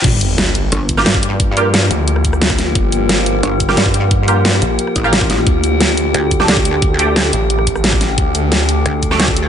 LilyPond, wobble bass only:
\new Staff \with { instrumentName = "Wobble bass" } { \clef bass \time 4/4 \key g \minor \tempo 4 = 177 r2 g,,4 g,4~ | g,4. r2 r8 | r2 g,,4 g,4~ | g,4. r4 a,,4. |
r2 d,4 d,4~ | d,4. r2 r8 | r2 d,4 d,4 | }